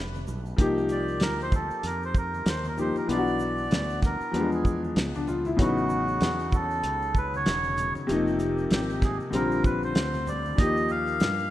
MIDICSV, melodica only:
0, 0, Header, 1, 2, 480
1, 0, Start_track
1, 0, Tempo, 625000
1, 452, Time_signature, 4, 2, 24, 8
1, 8834, End_track
2, 0, Start_track
2, 0, Title_t, "Melodica"
2, 0, Program_c, 0, 22
2, 703, Note_on_c, 0, 74, 89
2, 938, Note_on_c, 0, 70, 87
2, 945, Note_off_c, 0, 74, 0
2, 1082, Note_off_c, 0, 70, 0
2, 1093, Note_on_c, 0, 72, 96
2, 1184, Note_off_c, 0, 72, 0
2, 1188, Note_on_c, 0, 69, 87
2, 1427, Note_off_c, 0, 69, 0
2, 1427, Note_on_c, 0, 70, 92
2, 1566, Note_off_c, 0, 70, 0
2, 1576, Note_on_c, 0, 72, 91
2, 1665, Note_off_c, 0, 72, 0
2, 1672, Note_on_c, 0, 70, 90
2, 1909, Note_off_c, 0, 70, 0
2, 1910, Note_on_c, 0, 72, 91
2, 2048, Note_off_c, 0, 72, 0
2, 2063, Note_on_c, 0, 70, 86
2, 2140, Note_off_c, 0, 70, 0
2, 2155, Note_on_c, 0, 72, 92
2, 2277, Note_off_c, 0, 72, 0
2, 2284, Note_on_c, 0, 70, 85
2, 2371, Note_off_c, 0, 70, 0
2, 2390, Note_on_c, 0, 74, 109
2, 3071, Note_off_c, 0, 74, 0
2, 3113, Note_on_c, 0, 70, 90
2, 3459, Note_off_c, 0, 70, 0
2, 3492, Note_on_c, 0, 68, 67
2, 3707, Note_off_c, 0, 68, 0
2, 4306, Note_on_c, 0, 66, 95
2, 5023, Note_on_c, 0, 69, 101
2, 5041, Note_off_c, 0, 66, 0
2, 5511, Note_on_c, 0, 71, 99
2, 5512, Note_off_c, 0, 69, 0
2, 5648, Note_off_c, 0, 71, 0
2, 5654, Note_on_c, 0, 73, 96
2, 6094, Note_off_c, 0, 73, 0
2, 6695, Note_on_c, 0, 67, 81
2, 6941, Note_off_c, 0, 67, 0
2, 6943, Note_on_c, 0, 68, 82
2, 7048, Note_off_c, 0, 68, 0
2, 7176, Note_on_c, 0, 70, 93
2, 7398, Note_off_c, 0, 70, 0
2, 7414, Note_on_c, 0, 71, 89
2, 7546, Note_off_c, 0, 71, 0
2, 7559, Note_on_c, 0, 72, 91
2, 7897, Note_on_c, 0, 74, 95
2, 7904, Note_off_c, 0, 72, 0
2, 8129, Note_on_c, 0, 75, 110
2, 8142, Note_off_c, 0, 74, 0
2, 8376, Note_on_c, 0, 77, 108
2, 8378, Note_off_c, 0, 75, 0
2, 8834, Note_off_c, 0, 77, 0
2, 8834, End_track
0, 0, End_of_file